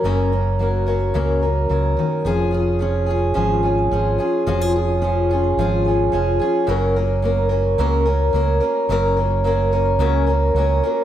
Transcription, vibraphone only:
X:1
M:4/4
L:1/16
Q:1/4=108
K:F#
V:1 name="Vibraphone"
[Aca] a2 c a A c a A c a2 c a A c | G c2 G c g G2 g G c g G c g G | c g2 c g G c g G c g G c g G c | A c2 A c a A2 a A c a A c a A |
c a2 c a A c a A c a A c a A c |]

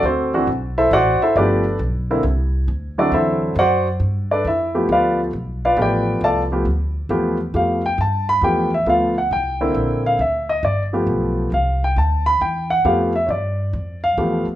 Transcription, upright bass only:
X:1
M:3/4
L:1/8
Q:"Swing" 1/4=136
K:Gmix
V:1 name="Upright bass" clef=bass
D,,2 B,,,2 A,,, z | G,,,2 B,,,2 C,,2 | D,,2 E,,2 ^F,,2 | G,,2 F,,2 D,,2 |
B,,,2 A,,,2 C,,2 | D,,2 E,,2 F,,2 | G,,2 E,,2 D,,2 | C,,2 _B,,,2 D,,2 |
G,,,2 B,,,2 C,,2 | D,,2 E,,2 F,,2 | G,,2 F,,2 E,, z |]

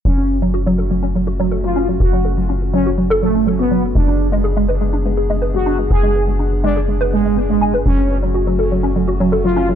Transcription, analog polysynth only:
X:1
M:4/4
L:1/16
Q:1/4=123
K:F#m
V:1 name="Analog polysynth"
C3 z8 z2 ^E2 z | F3 z3 C z3 A,2 z B,2 z | D3 z8 z2 F2 z | G3 z3 D z3 G,2 z G,2 z |
C3 z8 z2 ^E2 z |]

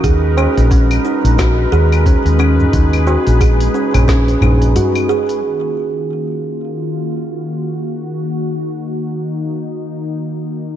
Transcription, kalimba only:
X:1
M:4/4
L:1/16
Q:"Swing 16ths" 1/4=89
K:Ebm
V:1 name="Kalimba"
A z D z D2 E z G2 A z D z D2 | E z G2 A z D z D2 E z G2 A z | z16 | z16 |]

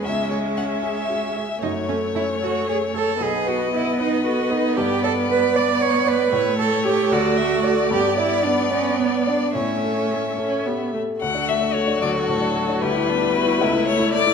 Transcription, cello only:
X:1
M:6/8
L:1/8
Q:3/8=76
K:Bmix
V:1 name="Cello"
C4- C z | D C E F G A | G F E D F D | [K:D] G A B d c B- |
B A G F3 | G E D C B, D | C3 z3 | z3 F3 |
G D F E3 |]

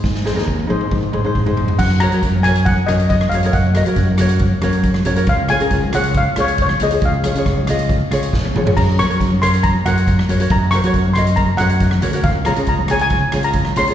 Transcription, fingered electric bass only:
X:1
M:4/4
L:1/16
Q:1/4=138
K:Gblyd
V:1 name="Fingered electric bass" clef=bass
A,,3 E,,3 A,,2 A,,3 A,,2 A,,3 | G,,3 G, G,,6 G,,4 G,,2 | G,,3 G, G,,6 G,,4 G,,2 | D,,3 D, D,,6 D,,4 D,,2 |
D,,3 D, D,,6 D,,2 B,,,2 A,,,2 | G,,3 G, G,,6 G,,4 G,,2 | G,,3 G, G,,6 G,,4 =D,,2 | D,,3 D, D,,6 D,,4 D,,2 |]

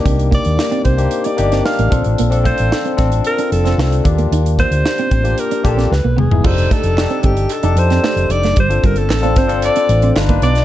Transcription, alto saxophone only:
X:1
M:4/4
L:1/16
Q:1/4=113
K:Fmix
V:1 name="Alto saxophone"
z2 d4 c3 d3 f3 z | z2 c4 z2 B2 A4 z2 | z2 c6 B2 A2 _c2 _A2 | c2 A4 G2 A2 c4 d2 |
c2 B A3 c2 d4 z2 d2 |]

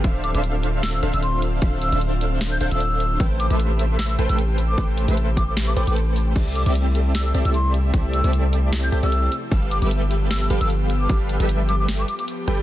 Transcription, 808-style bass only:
X:1
M:4/4
L:1/16
Q:"Swing 16ths" 1/4=152
K:C
V:1 name="808-style bass" clef=bass
D,,,3 D,,,6- D,,, D,,, D,,,4- D,,, | D,,,3 D,,,6- D,,, D,,, D,,,4- D,,, | A,,,3 A,,,6- A,,, A,,, A,,,4- A,,, | A,,,3 A,,,6- A,,, A,,, A,,,4- A,,, |
C,,3 C,,6- C,, C,, C,,4- C,, | z3 C,,6- C,, C,, C,,3 z2 | G,,,3 G,,,6- G,,, G,,, G,,,4- G,,, | z3 G,,,6- G,,, z4 G,,,2 |]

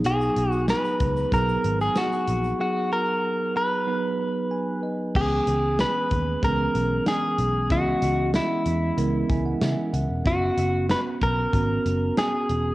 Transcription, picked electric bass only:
X:1
M:4/4
L:1/16
Q:1/4=94
K:C#dor
V:1 name="Picked electric bass" clef=bass
B,,,2 B,,,3 z C,,2 B,,,2 G,,,2 z2 A,,,2 | z16 | C,,2 C,,3 z D,,2 C,,2 B,,,2 z2 B,,,2 | C,,2 C,,3 z E,,2 C,,2 C,,2 C, z C,, E,,, |
F,,,2 F,,,3 z B,,,2 G,,,2 F,,,2 z2 E,,,2 |]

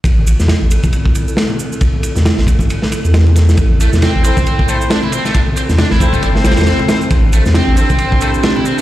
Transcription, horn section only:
X:1
M:4/4
L:1/16
Q:"Swing 16ths" 1/4=136
K:Am
V:1 name="Horn section"
z16 | z16 | z6 [CEAc] z3 [CEAc]2 z4 | z6 [CEAc]3 [CEAc] [CEAc]4 [CEAc] z |
z6 [CEAc] z3 [CEAc]2 z4 |]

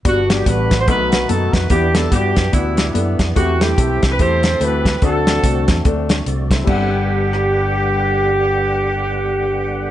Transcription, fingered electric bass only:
X:1
M:4/4
L:1/8
Q:"Swing" 1/4=145
K:G
V:1 name="Fingered electric bass" clef=bass
G,,,2 A,,,2 B,,,2 F,, =F,, | E,,2 G,, F,, D,,2 F,, =F,, | E,,2 B,,, C,, E,,2 D,,2 | D,,2 C,, E,, D,,2 C,,2 |
G,,,8- | G,,,8 |]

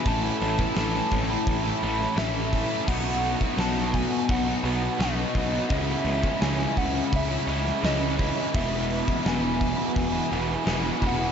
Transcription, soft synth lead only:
X:1
M:4/4
L:1/8
Q:1/4=85
K:E
V:1 name="Soft synth lead"
a2 a4 e2 | f2 a g f2 d2 | e2 g f e2 d2 | e2 g2 g3 f |]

